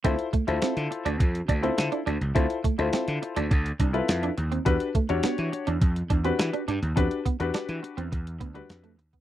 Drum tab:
HH |xxxxxxxxxxxxxxxx|xxxxxxxxxxxxxxxx|xxxxxxxxxxxxxxxx|xxxxxxxxxxxxxxxx|
SD |----o-------o---|----o-------o---|----o-------o---|----o-------o---|
BD |o-o-----o-o-----|o-o-----o-o-----|o-o-----o-o-----|o-o-----o-o----o|